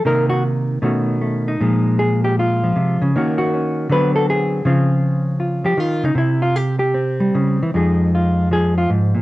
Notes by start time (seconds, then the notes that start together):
0.05 C3 D#3 A#3 D#4 A#4
0.29 F#4
0.82 B2 D#3 A3 C#4 F#4
1.21 A3
1.48 D#4
1.60 A#2 F3 G#3
1.99 G#4
2.24 G4
2.39 F4
2.63 F3
2.76 C3
3.01 C#3
3.16 D#3 A#3 C#4 F#4
3.38 F#4
3.54 C#4
3.90 D3 F#3 B3 C4 B4
4.16 A4
4.30 G#4
4.65 C#3 F3 C4 F4
5.39 F4
5.64 F3 G4
5.77 D#3 F4
6.03 C#3 D#4
6.15 C3 E4
6.42 F4
6.56 G4
6.79 G4
6.94 C4
7.20 G3
7.35 C#3
7.63 E3
7.74 F2 F3 G#3 D#4 G#4
8.15 F4
8.51 F3 G#4
8.78 F4
8.90 G#2
9.15 A#2